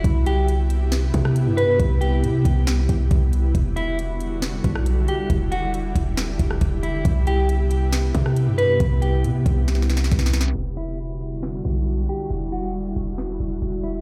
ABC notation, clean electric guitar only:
X:1
M:4/4
L:1/8
Q:1/4=137
K:Em
V:1 name="Clean electric guitar"
z G z4 z B | z G z6 | z E z4 z G | z F z4 z E |
z G z4 z B | z G z6 | z E z4 z G | z F z4 z E |]